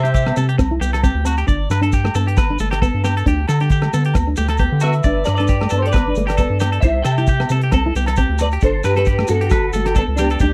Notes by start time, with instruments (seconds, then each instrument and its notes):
Already playing: analog synth bass C3, clean electric guitar C5 E5
0.03 clean electric guitar G4, muted nylon-string guitar stroke, closed hi-hat, maracas
0.14 clean electric guitar G4, kick, closed hi-hat, maracas
0.26 nylon-string guitar B3, cross-stick, low agogo
0.36 analog synth bass C3, nylon-string guitar C4, clean electric guitar A4, closed hi-hat, maracas
0.49 clean electric guitar G4, closed hi-hat
0.58 analog synth bass C2, nylon-string guitar C4, muted clean electric guitar stroke, kick, cross-stick, closed hi-hat, low agogo, maracas
0.71 nylon-string guitar E4
0.81 analog synth bass C2, nylon-string guitar B3, clean electric guitar G4, closed hi-hat, maracas
0.93 clean electric guitar A4, cross-stick, closed hi-hat, low agogo, maracas
1.03 nylon-string guitar C4, clean electric guitar G4, kick, closed hi-hat, maracas
1.15 analog synth bass D2
1.25 nylon-string guitar C4, clean electric guitar F#4, closed hi-hat, low agogo, maracas
1.37 clean electric guitar G4, closed hi-hat, maracas
1.47 analog synth bass G1, nylon-string guitar D4, clean electric guitar D5, kick, closed hi-hat, maracas
1.70 analog synth bass G2, clean electric guitar B4, cross-stick, closed hi-hat, low agogo, maracas
1.82 nylon-string guitar D4, clean electric guitar A4, closed hi-hat, maracas
1.92 clean electric guitar G4, kick, closed hi-hat, maracas
2.04 nylon-string guitar A3, cross-stick, low agogo
2.15 analog synth bass G2, nylon-string guitar B3, clean electric guitar A4, closed hi-hat, maracas
2.27 clean electric guitar G4, closed hi-hat
2.37 analog synth bass G1, nylon-string guitar B3, clean electric guitar B4, kick, cross-stick, closed hi-hat, low agogo, maracas
2.50 nylon-string guitar D4
2.59 analog synth bass G1, nylon-string guitar A3, clean electric guitar A4, closed hi-hat, maracas
2.71 clean electric guitar G4, cross-stick, closed hi-hat, low agogo, maracas
2.82 nylon-string guitar B3, clean electric guitar A4, kick, closed hi-hat, maracas
2.94 analog synth bass G2
3.04 nylon-string guitar B3, clean electric guitar G4, cross-stick, closed hi-hat, low agogo, maracas
3.17 clean electric guitar A4, closed hi-hat, maracas
3.26 analog synth bass D2, nylon-string guitar D4, clean electric guitar G4, kick, closed hi-hat, maracas
3.48 analog synth bass D3, clean electric guitar A4, cross-stick, closed hi-hat, low agogo, maracas
3.60 nylon-string guitar D4, clean electric guitar G4, closed hi-hat, maracas
3.70 clean electric guitar G4, kick, closed hi-hat, maracas
3.82 nylon-string guitar A3, cross-stick, low agogo
3.93 analog synth bass D3, nylon-string guitar B3, clean electric guitar A4, closed hi-hat, maracas
4.05 clean electric guitar G4, closed hi-hat, maracas
4.14 analog synth bass D2, nylon-string guitar B3, muted clean electric guitar stroke, kick, cross-stick, closed hi-hat, low agogo, maracas
4.27 nylon-string guitar D4
4.36 analog synth bass D2, nylon-string guitar A3, clean electric guitar G4, closed hi-hat, maracas
4.48 clean electric guitar A4, cross-stick, closed hi-hat, low agogo, maracas
4.57 nylon-string guitar B3, clean electric guitar G4, kick, closed hi-hat, maracas
4.72 analog synth bass D3
4.80 nylon-string guitar B3, clean electric guitar F#4 B4 E5, closed hi-hat, low agogo, maracas
4.92 closed hi-hat, maracas
5.03 analog synth bass G1, nylon-string guitar D4, clean electric guitar D5, kick, closed hi-hat, maracas
5.25 analog synth bass G2, clean electric guitar B4 D5, cross-stick, closed hi-hat, low agogo, maracas
5.34 clean electric guitar A4 B4 D5, maracas
5.40 nylon-string guitar D4, closed hi-hat
5.47 clean electric guitar G4, kick, closed hi-hat, maracas
5.61 nylon-string guitar A3, cross-stick, low agogo
5.70 analog synth bass G2, nylon-string guitar B3, clean electric guitar A4, closed hi-hat, maracas
5.78 clean electric guitar A4 C5
5.82 clean electric guitar G4, closed hi-hat
5.87 clean electric guitar D5
5.91 analog synth bass G1, nylon-string guitar B3, clean electric guitar B4, kick, low agogo, maracas
5.96 cross-stick, closed hi-hat
6.08 nylon-string guitar D4
6.15 analog synth bass G1, nylon-string guitar A3, closed hi-hat, maracas
6.27 clean electric guitar G4, cross-stick, closed hi-hat, low agogo, maracas
6.37 nylon-string guitar B3, clean electric guitar A4, kick, closed hi-hat, maracas
6.50 analog synth bass G2
6.60 nylon-string guitar B3, clean electric guitar G4, cross-stick, closed hi-hat, low agogo, maracas
6.72 clean electric guitar A4, closed hi-hat
6.80 analog synth bass C2, clean electric guitar C5 E5, muted clean electric guitar stroke, kick, closed hi-hat, maracas
6.85 nylon-string guitar E4
7.02 analog synth bass C3, clean electric guitar A4 E5 G5, cross-stick, closed hi-hat, low agogo, maracas
7.18 nylon-string guitar E4, clean electric guitar G4, closed hi-hat, maracas
7.27 clean electric guitar G4, kick, closed hi-hat, maracas
7.40 nylon-string guitar B3, cross-stick, low agogo
7.50 analog synth bass C3, nylon-string guitar C4, clean electric guitar A4, closed hi-hat, maracas
7.61 clean electric guitar G4, closed hi-hat
7.71 analog synth bass C2, nylon-string guitar C4, clean electric guitar A4, kick, cross-stick, closed hi-hat, low agogo, maracas
7.86 nylon-string guitar E4
7.95 analog synth bass C2, nylon-string guitar B3, clean electric guitar G4, closed hi-hat, maracas
8.06 clean electric guitar A4, cross-stick, closed hi-hat, low agogo, maracas
8.16 nylon-string guitar C4, clean electric guitar G4, kick, closed hi-hat, maracas
8.29 analog synth bass D2
8.39 clean electric guitar B4 D5, muted clean electric guitar stroke, muted nylon-string guitar stroke, closed hi-hat, low agogo, maracas
8.51 clean electric guitar G4, closed hi-hat, maracas
8.61 analog synth bass G1, nylon-string guitar D4, clean electric guitar A4 C5, muted clean electric guitar stroke, kick, closed hi-hat, maracas
8.84 analog synth bass G2, clean electric guitar G4 B4, cross-stick, closed hi-hat, low agogo, maracas
8.96 clean electric guitar G4 A4 B4, muted nylon-string guitar stroke, closed hi-hat, maracas
9.05 clean electric guitar G4, kick, closed hi-hat, maracas
9.18 nylon-string guitar A3, cross-stick, low agogo
9.27 analog synth bass G2, nylon-string guitar B3, clean electric guitar F#4 A4, muted clean electric guitar stroke, closed hi-hat, maracas
9.41 clean electric guitar G4, closed hi-hat
9.50 analog synth bass G1, clean electric guitar B4, muted nylon-string guitar stroke, kick, cross-stick, closed hi-hat, low agogo, maracas
9.73 analog synth bass G1, nylon-string guitar A3, clean electric guitar A4, closed hi-hat, maracas
9.85 clean electric guitar G4, cross-stick, closed hi-hat, low agogo, maracas
9.94 nylon-string guitar B3, clean electric guitar D4 A4, kick, closed hi-hat, maracas
10.08 analog synth bass C#2
10.15 clean electric guitar D4 G4, cross-stick, closed hi-hat, low agogo, maracas
10.21 nylon-string guitar B3
10.30 clean electric guitar A4, closed hi-hat, maracas
10.39 analog synth bass D2, nylon-string guitar D4, clean electric guitar G4, kick, closed hi-hat, maracas